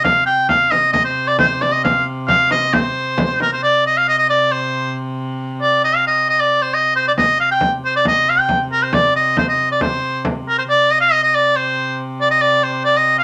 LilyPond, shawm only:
\new Staff \with { instrumentName = "Shawm" } { \time 2/4 \key c \minor \tempo 4 = 136 f''8 g''8 f''8 ees''8 | ees''16 c''8 d''16 c''8 d''16 ees''16 | f''8 r8 f''8 ees''8 | c''4. bes'16 c''16 |
d''8 ees''16 f''16 ees''16 ees''16 d''8 | c''4 r4 | r8 d''8 ees''16 f''16 ees''8 | ees''16 d''8 c''16 ees''8 c''16 d''16 |
ees''8 f''16 g''8 r16 c''16 d''16 | ees''8 f''16 g''8 r16 bes'16 c''16 | d''8 ees''8 c''16 ees''8 d''16 | c''4 r8 bes'16 c''16 |
d''8 ees''16 f''16 ees''16 ees''16 d''8 | c''4 r8 d''16 ees''16 | d''8 c''8 d''16 ees''8 f''16 | }